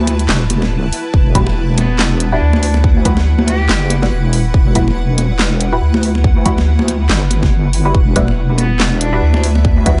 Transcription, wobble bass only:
Already playing: D2
0.28 E1
1.14 E1
2.41 D2
3.69 F#1
4.12 E1
4.54 E1
5.82 D2
7.09 G1
7.95 E1
9.22 D2

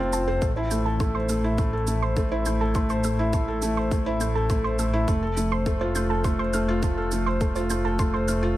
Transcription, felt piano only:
Already playing: A3 F4 A4 C5 A5
0.00 C4
0.13 F4
0.28 C5
0.42 A3
0.57 E4
0.71 A3
0.86 A4
1.00 A3
1.15 C5
1.29 A3
1.44 E4
1.59 A3
1.73 A4
1.88 A3
2.02 C5
2.17 A3
2.32 E4
2.46 A3
2.61 A4
2.75 A3
2.90 C5
3.04 A3
3.19 E4
3.34 A3
3.48 A4
3.62 A3
3.77 C5
3.92 A3
4.06 E4
4.20 A3
4.35 A4
4.50 A3
4.64 C5
4.79 A3
4.93 E4
5.08 A3
5.23 A4
5.37 A3
5.51 C5
5.66 A3
5.81 F4
5.96 A3
6.10 A4
6.25 A3
6.39 C5
6.54 A3
6.68 F4
6.83 A3
6.98 A4
7.12 A3
7.27 C5
7.41 A3
7.56 F4
7.70 A3
7.85 A4
7.99 A3
8.14 C5
8.28 A3
8.43 F4

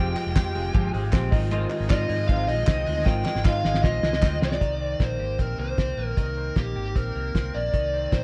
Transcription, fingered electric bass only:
Already playing: F1
0.26 F1
0.36 F2
0.55 F1
0.74 G1
0.94 G#1
1.13 A#1
1.32 G#1
1.80 G#1
1.91 G#2
2.10 G#2
2.29 G#1
2.48 A#1
2.67 C2
2.87 D2
3.06 G#1
3.35 G#1
3.45 G#2
3.64 G#1
3.84 A#1
4.03 C2
4.22 D2
4.41 C2
4.61 C2
5.00 A#1
5.19 G#1
5.39 A#1
5.58 C2
5.78 C2
5.97 A#1
6.17 C2
6.56 A#1
6.76 G#1
6.96 A#1
7.15 C2
7.34 C2
7.54 A#1
7.73 C2
8.12 A#1

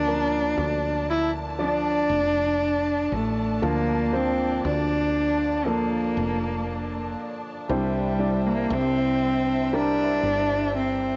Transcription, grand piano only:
Already playing: D3 F3 A#3 D4 A#4
0.07 F3 A#3 C#4 A#4
0.14 D4
1.59 F3 D4 D5
3.62 D3 F3 A#3 D4 F4
4.13 F3 A#3 D4 C5
5.66 F3 A#3 D4 A4
7.69 C3 G3 D4 E4 C5
8.19 G3 D4 E4 D5
9.73 G3 D4 E4 A#4

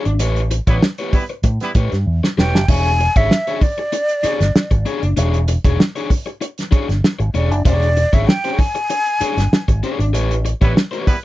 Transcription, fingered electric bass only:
0.06 G#1
0.21 A1
0.67 A1
1.44 A2
1.75 A2
1.92 G2
2.06 E2
2.38 E1
2.54 F#1
2.69 E1
3.16 G#1
4.24 muted fingered electric bass stroke
4.40 G1
4.55 muted fingered electric bass stroke
4.71 G#1
5.03 F#1
5.17 E1
5.65 E1
6.73 muted fingered electric bass stroke
6.89 G1
7.20 G#1
7.34 E1
7.51 F#1
7.65 E1
8.13 G#1
9.21 muted fingered electric bass stroke
9.37 G1
9.68 G#1
9.99 G#1
10.14 A1
10.62 A1

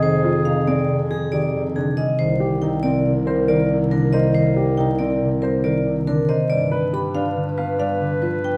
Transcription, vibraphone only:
0.03 C5
0.45 F5
0.68 D5
1.11 G#4
1.32 D5
1.76 G#4
1.97 D#5
2.19 C5
2.62 G5
2.83 D5
3.27 A#4
3.48 D5
3.91 A#4
4.13 D#5
4.35 C5
4.77 G5
4.99 D5
5.42 A#4
5.64 D5
6.07 A#4
6.29 D#5
6.50 D5
6.94 B5
7.15 F5
7.58 B4
7.80 F5
8.22 B4
8.44 G5

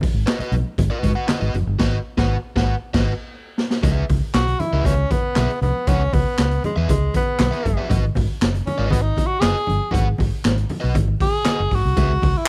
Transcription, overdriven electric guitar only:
0.26 F#4 B4 D#5
0.40 F#4 B4 D#5
0.90 F#4 B4 D#5
1.15 F#4 B4 F#5
1.27 F#4 B4 D#5
1.41 F#4 B4 D#5
1.79 F#4 B4 D#5
2.18 F#4 B4 F#5
2.56 F#4 B4 F#5
2.94 F#4 B4 D#5
3.83 G#4 B4 E5
4.73 G#4 B4 E5
5.36 G#4 B4 E5
5.88 G#4 B4 F#5
6.76 G#4 B4 E5
7.51 G#4 B4 E5
7.77 G#4 B4 E5
7.89 F#4 B4 D#5
8.78 F#4 B4 D#5
9.42 F#4 B4 D#5
9.91 F#4 B4 F#5
10.80 F#4 B4 D#5
11.45 F#4 B4 D#5
11.97 G#4 B4 E5

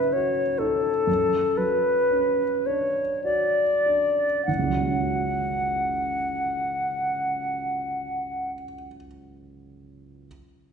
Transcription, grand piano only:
Already playing: F#2 C#3 C#4 D#4
0.15 F#4
0.60 D#4
1.07 F#2
1.58 F#3
2.11 C#4
2.67 D4
3.24 F#4
3.86 D4
4.48 F#1
4.59 C#2
4.70 F#3
4.80 G#3
4.90 C#4
5.01 F#4

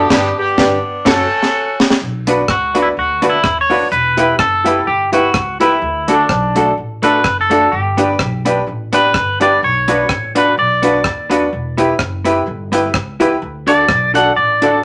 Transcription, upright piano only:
0.10 D4 G4 B4
0.58 D4 G4 B4
1.05 C#4 F#4 A4
2.27 D4 F#4 B4
2.74 D4 F#4 B4
3.22 D4 F#4 B4
3.70 D4 F#4 B4
4.17 E4 G4 B4
4.64 E4 G4 B4
5.12 E4 G4 B4
5.60 E4 G4 B4
6.08 D4 F#4 A4
6.55 D4 F#4 A4
7.03 D4 F#4 A4
7.50 D4 F#4 A4
7.98 D4 G4 B4
8.45 D4 G4 B4
8.93 D4 G4 B4
9.40 D4 G4 B4
9.88 D4 F#4 B4
10.35 D4 F#4 B4
10.83 D4 F#4 B4
11.30 D4 F#4 B4
11.78 E4 G4 B4
12.25 E4 G4 B4
12.73 E4 G4 B4
13.20 E4 G4 B4
13.67 D4 F#4 A4
14.14 D4 F#4 A4
14.62 D4 F#4 A4

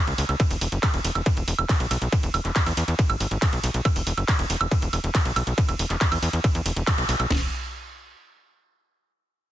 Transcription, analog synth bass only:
0.07 C#2
0.18 C#2
0.29 C#2
0.51 E1
0.61 E1
0.72 F#1
0.94 E1
1.05 E1
1.15 E1
1.37 E1
1.48 E1
1.59 E1
1.80 B1
1.91 B1
2.02 B1
2.23 E1
2.34 E1
2.45 E1
2.66 E2
2.77 E2
2.88 E2
3.10 G#1
3.20 G#1
3.31 G#1
3.53 B1
3.64 B1
3.74 B1
3.96 E1
4.07 E1
4.18 F#1
4.39 E1
4.50 E1
4.61 E1
4.82 E1
4.93 E1
5.04 E1
5.25 B1
5.36 B1
5.47 B1
5.69 E1
5.79 E1
5.90 E1
6.12 E2
6.23 E2
6.33 E2
6.55 E2
6.66 E1
6.76 E1
6.98 B1
7.09 B1
7.20 B1
7.30 D#1

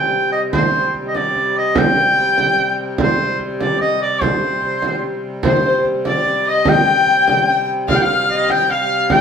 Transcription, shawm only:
Already playing: G5
0.32 D#5
0.53 C5
1.08 D#5
1.15 D5
1.58 D#5
1.78 G5
3.01 C5
3.61 D5
3.81 D#5
4.02 D5
4.22 C5
5.44 C5
6.06 D5
6.48 D#5
6.69 G5
7.91 F5
7.96 G5
8.03 F5
8.30 D#5
8.51 G5
8.71 F5
9.12 G5

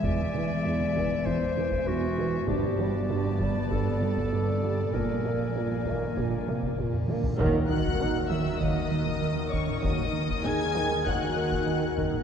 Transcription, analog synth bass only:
0.04 E2
0.34 E3
0.65 E2
0.96 E3
1.26 E2
1.57 E3
1.88 E2
2.18 E3
2.48 G2
2.79 G3
3.10 G2
3.40 G3
3.71 G2
4.01 G3
4.33 G2
4.63 G3
4.94 A#2
5.24 A#3
5.55 A#2
5.87 A#3
6.17 A#2
6.47 A#3
6.78 A#2
7.08 A#3
7.38 D#3
7.69 D#3
8.00 D#4
8.30 D#3
8.61 D#3
8.91 D#3
9.22 D#3
9.53 D#3
9.83 D#3
10.13 D#3
10.44 D#4
10.75 D#3
11.06 D#3
11.36 D#3
11.67 D#3
11.98 D#3

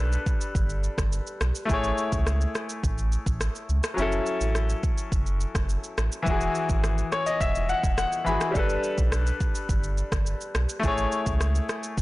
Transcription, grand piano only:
Already playing: G3 D4 A4 B4
1.65 A3 E4
1.71 G#4 C#5
3.94 F#3 C#4
3.99 E4 A4
6.22 E3 E4
6.28 F#4 G#4
7.12 C#5
7.26 D#5
7.41 E5
7.69 F#5
7.98 F#5
8.24 E3 E4 F#4 B5
8.28 G#4
8.51 G3 D4
8.56 A4 B4
10.80 A3 E4
10.85 G#4 C#5

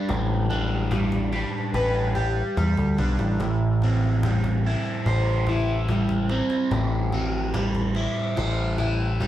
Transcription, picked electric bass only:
0.09 A1
1.74 A1
2.57 E2
2.78 D2
2.99 B1
3.20 A1
3.40 A1
5.06 A1
6.71 A1
8.37 A1

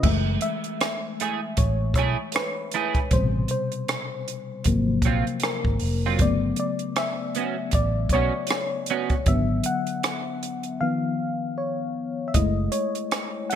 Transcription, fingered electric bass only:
0.04 F#1
1.59 A1
1.95 B1
3.12 A1
4.66 G#1
5.03 A#1
5.66 G#1
5.82 F1
6.20 G1
7.74 A1
8.10 B1
9.27 G#1
12.35 F#1

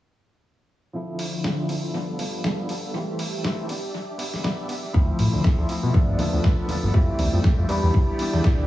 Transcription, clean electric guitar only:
0.93 F3 C4 E4 A4
1.43 F3 C4 E4 A4
1.68 F3 C4 E4 A4
1.82 C4 E4 A4
1.93 F3 B3 D4 A4
2.07 B3 D4 A4
2.18 F3 B3 D4 A4
2.43 F3 B3 D4 A4
2.68 F3 B3 D4 A4
2.82 B3 D4 A4
2.93 E3 A3 C4 G4
3.43 E3 A3 C4 G4
3.68 B3 D4 G4
3.82 D4 G4
4.07 D4 G4
4.18 B3 D4 G4
4.43 B3 D4 G4
4.68 B3 D4 G4
4.82 D4 G4
4.93 F3 C4 E4 A4
5.44 F3 C4 E4 A4
5.68 F3 C4 E4 A4
5.82 C4 E4 A4
5.93 F3 B3 D4 A4
6.08 B3 D4 A4
6.18 F3 B3 D4 A4
6.44 F3 B3 D4 A4
6.68 F3 B3 D4 A4
6.82 B3 D4 A4
6.94 E3 A3 C4 G4
7.44 E3 A3 C4 G4
7.68 E3 B3 D4 G4
7.82 B3 D4 G4
8.07 B3 D4 G4
8.18 E3 B3 D4 G4
8.43 E3 B3 D4 G4

